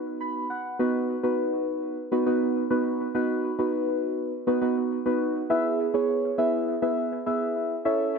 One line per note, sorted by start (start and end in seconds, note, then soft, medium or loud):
0.00 0.45 B3 medium
0.00 0.45 D#4 medium
0.00 0.45 F#4 medium
0.00 0.45 B4 medium
0.20 0.48 B5 medium
0.50 0.77 F#5 medium
0.79 1.16 B3 medium
0.79 1.16 D#4 medium
0.79 1.16 F#4 medium
0.79 1.16 B4 loud
1.23 1.97 B3 medium
1.23 1.97 D#4 medium
1.23 1.97 F#4 medium
1.23 1.97 B4 medium
2.12 2.24 B3 medium
2.12 2.24 D#4 medium
2.12 2.24 F#4 medium
2.12 2.24 B4 medium
2.26 2.63 B3 medium
2.26 2.63 D#4 medium
2.26 2.63 F#4 medium
2.26 2.63 B4 medium
2.71 3.07 B3 medium
2.71 3.07 D#4 medium
2.71 3.07 F#4 medium
2.71 3.07 B4 medium
3.15 3.52 B3 medium
3.15 3.52 D#4 medium
3.15 3.52 F#4 medium
3.15 3.52 B4 loud
3.59 4.33 B3 medium
3.59 4.32 D#4 medium
3.59 4.32 F#4 medium
3.59 4.33 B4 medium
4.47 4.59 B3 medium
4.47 4.59 D#4 medium
4.47 4.59 F#4 medium
4.47 4.59 B4 loud
4.62 4.99 B3 medium
4.62 4.99 D#4 medium
4.62 4.99 F#4 medium
4.62 4.99 B4 medium
5.06 5.43 B3 medium
5.06 5.43 D#4 medium
5.06 5.43 F#4 medium
5.06 5.43 B4 medium
5.50 5.87 B3 medium
5.50 5.87 E4 medium
5.50 5.87 G#4 medium
5.50 5.87 B4 medium
5.50 5.87 E5 medium
5.94 6.31 B3 medium
5.94 6.31 E4 medium
5.94 6.31 G#4 medium
5.94 6.31 B4 medium
5.94 6.31 C#5 medium
6.38 6.75 B3 medium
6.38 6.75 E4 medium
6.38 6.75 G#4 medium
6.38 6.75 B4 medium
6.38 6.75 E5 loud
6.82 7.19 B3 medium
6.82 7.19 E4 medium
6.82 7.19 G#4 medium
6.82 7.19 B4 medium
6.82 7.19 E5 loud
7.26 7.76 B3 medium
7.26 7.76 E4 medium
7.26 7.76 G#4 medium
7.26 7.76 B4 medium
7.26 7.76 E5 medium
7.85 8.19 C#4 medium
7.85 8.19 E4 medium
7.85 8.19 A4 medium
7.85 8.19 C#5 medium
7.85 8.19 E5 loud